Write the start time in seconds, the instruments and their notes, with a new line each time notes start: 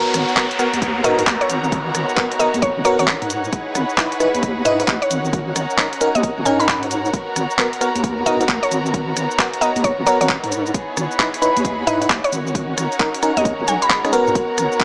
Already playing: fm electric piano B3 F#4 A#4, violin section B3 D#4 F#4 A#4, string section C#5 F#5, downlifter
0.14 wobble bass G#1, cross-stick, closed hi-hat, shaker
0.29 string section A#5, shaker
0.37 fm electric piano B3 F#4 A#4, kick, clap, shaker
0.51 closed hi-hat
0.59 fm electric piano B3 F#4 A#4, cross-stick, closed hi-hat, shaker
0.73 wobble bass D#2, closed hi-hat, shaker
0.82 kick, closed hi-hat, shaker
1.04 wobble bass G#2, fm electric piano B3 F#4 A#4, synth pluck D#5, closed hi-hat, shaker
1.19 fm electric piano B3 F#4 A#4, closed hi-hat, shaker
1.27 wobble bass D#2, kick, clap, shaker
1.41 synth pluck C#5, closed hi-hat
1.49 wobble bass G#1, closed hi-hat, shaker
1.64 shaker
1.72 kick, closed hi-hat, shaker
1.95 wobble bass G#1, cross-stick, closed hi-hat, shaker
2.09 shaker
2.17 fm electric piano B3 F#4 A#4, kick, clap, shaker
2.32 closed hi-hat
2.39 fm electric piano B3 F#4 A#4, synth pluck D#5, closed hi-hat, shaker
2.54 wobble bass D#2, closed hi-hat, shaker
2.62 synth pluck C#5, kick, closed hi-hat, shaker
2.77 wobble bass G#1
2.85 fm electric piano B3 F#4 A#4, synth pluck C#5, closed hi-hat, shaker
2.99 wobble bass G#1, fm electric piano B3 F#4 A#4, synth pluck C#5, closed hi-hat, shaker
3.08 kick, clap, shaker
3.22 wobble bass G#2, closed hi-hat
3.30 closed hi-hat, shaker
3.44 shaker
3.53 violin section E4 G#4 B4, kick, closed hi-hat, shaker
3.68 string section B5
3.75 wobble bass G#1, cross-stick, closed hi-hat, shaker
3.90 shaker
3.98 fm electric piano D#4 E4 B4, kick, clap, shaker
4.12 closed hi-hat
4.20 fm electric piano D#4 E4 B4, cross-stick, closed hi-hat, shaker
4.34 wobble bass D#2, closed hi-hat, shaker
4.43 kick, closed hi-hat, shaker
4.65 wobble bass G#2, fm electric piano D#4 E4 B4, synth pluck D#5, closed hi-hat, shaker
4.80 fm electric piano D#4 E4 B4, closed hi-hat, shaker
4.88 wobble bass D#2, kick, clap, shaker
5.02 synth pluck C#5, closed hi-hat
5.10 wobble bass G#1, violin section C#4 F#4 A#4, closed hi-hat, shaker
5.25 shaker
5.33 kick, closed hi-hat, shaker
5.55 wobble bass G#1, string section A#5, cross-stick, closed hi-hat, shaker
5.70 shaker
5.78 fm electric piano C#4 D#4 A#4, kick, clap, shaker
5.93 closed hi-hat
6.01 fm electric piano C#4 D#4 A#4, closed hi-hat, shaker
6.15 wobble bass D#2, synth pluck D#5, closed hi-hat, shaker
6.23 kick, closed hi-hat, shaker
6.38 wobble bass G#1
6.45 wobble bass G#2, fm electric piano C#4 D#4 A#4, synth pluck G#5, closed hi-hat, shaker
6.60 fm electric piano C#4 D#4 A#4, synth pluck B5, closed hi-hat, shaker
6.68 synth pluck B5, kick, clap, shaker
6.83 closed hi-hat
6.91 closed hi-hat, shaker
7.05 shaker
7.13 violin section B3 D#4, kick, closed hi-hat, shaker
7.36 wobble bass G#1, cross-stick, closed hi-hat, shaker
7.50 shaker
7.59 fm electric piano B3 F#4 A#4, kick, clap, shaker
7.73 closed hi-hat
7.81 fm electric piano B3 F#4 A#4, cross-stick, closed hi-hat, shaker
7.95 wobble bass D#2, closed hi-hat, shaker
8.04 kick, closed hi-hat, shaker
8.26 wobble bass G#2, fm electric piano B3 F#4 A#4, synth pluck D#5, closed hi-hat, shaker
8.40 fm electric piano B3 F#4 A#4, closed hi-hat, shaker
8.49 wobble bass D#2, kick, clap, shaker
8.63 synth pluck C#5, closed hi-hat
8.71 wobble bass G#1, closed hi-hat, shaker
8.86 shaker
8.94 kick, closed hi-hat, shaker
9.16 wobble bass G#1, cross-stick, closed hi-hat, shaker
9.31 shaker
9.39 fm electric piano B3 F#4 A#4, kick, clap, shaker
9.53 closed hi-hat
9.61 fm electric piano B3 F#4 A#4, synth pluck D#5, closed hi-hat, shaker
9.76 wobble bass D#2, closed hi-hat, shaker
9.84 synth pluck C#5, kick, closed hi-hat, shaker
9.98 wobble bass G#1
10.06 fm electric piano B3 F#4 A#4, synth pluck C#5, closed hi-hat, shaker
10.21 wobble bass G#1, fm electric piano B3 F#4 A#4, synth pluck C#5, closed hi-hat, shaker
10.29 kick, clap, shaker
10.43 wobble bass G#2, closed hi-hat
10.52 closed hi-hat, shaker
10.66 shaker
10.74 violin section E4 G#4, string section C#5, kick, closed hi-hat, shaker
10.97 wobble bass G#1, cross-stick, closed hi-hat, shaker
11.02 string section F#5
11.11 string section B5, shaker
11.19 fm electric piano D#4 E4 B4, kick, clap, shaker
11.34 closed hi-hat
11.42 fm electric piano D#4 E4 B4, closed hi-hat, shaker
11.56 wobble bass D#2, closed hi-hat, shaker
11.65 kick, closed hi-hat, shaker
11.87 wobble bass G#2, fm electric piano D#4 E4 B4, synth pluck D#5, closed hi-hat, shaker
12.02 fm electric piano D#4 E4 B4, closed hi-hat, shaker
12.10 wobble bass D#2, kick, clap, shaker
12.24 synth pluck C#5, closed hi-hat
12.32 wobble bass G#1, violin section C#4 F#4 A#4, closed hi-hat, shaker
12.47 shaker
12.55 kick, closed hi-hat, shaker
12.65 string section A#5
12.77 wobble bass G#1, cross-stick, closed hi-hat, shaker
12.92 closed hi-hat, shaker
13.00 fm electric piano C#4 D#4 A#4, kick, clap, shaker
13.14 closed hi-hat
13.23 fm electric piano C#4 D#4 A#4, cross-stick, closed hi-hat, shaker
13.37 wobble bass D#2, synth pluck D#5, closed hi-hat, shaker
13.45 kick, closed hi-hat, swell, shaker
13.59 wobble bass G#1
13.68 wobble bass B1, synth pluck G#5, closed hi-hat, shaker
13.82 synth pluck B5, closed hi-hat, shaker
13.90 synth pluck B5, kick, clap, shaker
14.05 fm electric piano C#4 D#4 G#4, cross-stick, closed hi-hat
14.13 fm electric piano B3 F#4 A#4, closed hi-hat, shaker
14.27 wobble bass G#2, shaker
14.35 violin section B3, kick, closed hi-hat, shaker
14.58 wobble bass G#1, cross-stick, closed hi-hat, shaker
14.72 shaker
14.80 fm electric piano B3 F#4 A#4, kick, clap, shaker